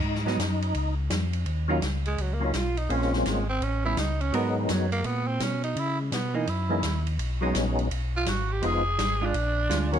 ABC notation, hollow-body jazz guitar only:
X:1
M:4/4
L:1/8
Q:"Swing" 1/4=168
K:C#mix
V:1 name="Hollow-body jazz guitar"
z [F,B,D] z6 | [K:Ebm] z [E,G,DF] z6 | z4 z [=G,=B,^C] z2 | [A,CGB]4- [A,CGB] z3 |
z3 [_F,B,E] z4 | z [^F,^G,^D] z6 | z3 [A,=DF] z2 [A,DF] z |]